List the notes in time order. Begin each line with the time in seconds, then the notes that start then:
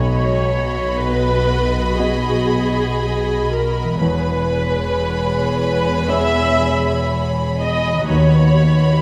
Already playing: B1 B2 B3 F#4 C#5 D#5 B5
0.97 B4
1.98 B3 F#4 G#4 D#5
3.51 A#4
3.83 E3
3.88 B3
3.93 G#4
3.97 E2 B4 C#5 B5
4.01 E1 E2 G#4 C#5
5.55 B4
6.08 B3 G#4 C#5 E5
7.60 D#5
7.92 D#3
7.96 B3
8.01 F#4
8.05 D#2 B4
8.10 D#2 F#4 B4 C#5 B5